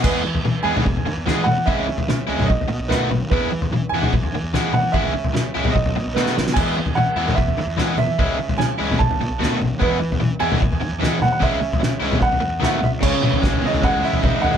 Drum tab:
CC |x---------------|----------------|----------------|----------------|
SD |------------o---|----o-------o---|------------o---|----o-------oooo|
T2 |----o--oo-----o-|----o--oo-----o-|----o--oo-----o-|----o--oo-------|
FT |o--o---o-o--o---|o--o---o-o--o---|o--o---o-o--o---|o--o---o-o------|
BD |o-------o-------|o-------o-------|o-------o-------|o-------o-------|

CC |x---------------|----------------|----------------|----------------|
SD |------------o---|----o-------o---|------------o---|----o-------o---|
T2 |----o--oo-----o-|----o--oo-----o-|----o--oo-----o-|----o--oo-----o-|
FT |o--o---o-o--o---|o--o---o-o--o---|o--o---o-o--o---|o--o---o-o--o---|
BD |o-------o-------|o-------o-------|o-------o-------|o-------o-------|

CC |x---------------|
SD |----o-----------|
T2 |--o---------o--o|
FT |o--o-o-oo--oo-oo|
BD |o---o---o---o---|